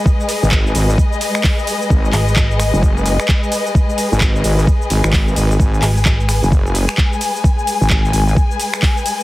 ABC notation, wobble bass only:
X:1
M:4/4
L:1/16
Q:"Swing 16ths" 1/4=130
K:G#m
V:1 name="Wobble bass" clef=bass
z3 G,,,3 G,,,2 z8 | G,,,2 z4 z F,,,4 z4 z | z3 G,,,3 G,,,2 z2 G,,, G,,,3 G,,,2 | G,,,2 z4 z F,,,4 z4 z |
z3 G,,,3 G,,,2 z8 |]